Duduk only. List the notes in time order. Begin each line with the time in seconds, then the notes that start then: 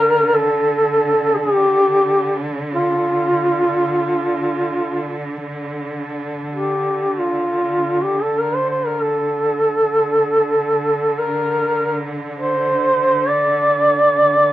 Already playing: A#4
0.36 A4
1.37 G#4
1.55 G4
2.74 F4
6.53 G4
7.19 F4
8.02 G4
8.22 A4
8.40 A#4
8.55 C5
8.70 C5
8.86 A#4
9.02 A4
11.18 A#4
12.38 C5
13.29 D5